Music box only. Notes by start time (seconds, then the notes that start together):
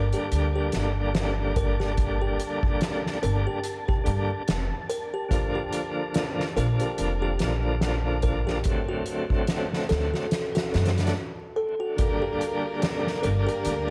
0.14 G4
0.55 G4
1.56 A#4
1.80 G4
2.21 G4
3.23 A#4
3.47 G4
3.88 G4
4.89 A#4
5.14 G4
5.55 G4
6.56 A#4
6.81 G4
7.22 G4
8.23 A#4
8.47 G4
8.88 F#4
9.89 A4
10.14 F#4
10.55 F#4
11.56 A4
11.80 F#4
12.22 G4
13.23 A#4
13.47 G4